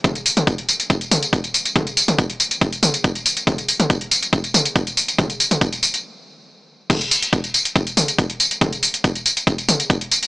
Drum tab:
CC |----------------|----------------|----------------|----------------|
HH |xxoxxxoxxxoxxxox|xxoxxxoxxxoxxxox|xxoxxxoxxxoxxxox|xxoxxxox--------|
TB |xxxxx-xxxxxxxxxx|xxxxx-xxxxxxxxxx|xxxxx-xxxxxxxxxx|xxxxxxxx--------|
T2 |o--o------o-----|o--o------o-----|o--o------o-----|o--o------------|
BD |o---o---o---o---|o---o---o---o---|o---o---o---o---|o---o-----------|

CC |x---------------|----------------|
HH |xxoxxxoxxxoxxxox|xxoxxxoxxxoxxxox|
TB |xxxxxxxxxxxxx-xx|xxxxxxxxxxxxx-xx|
T2 |o---------o-----|o---------o-----|
BD |o---o---o---o---|o---o---o---o---|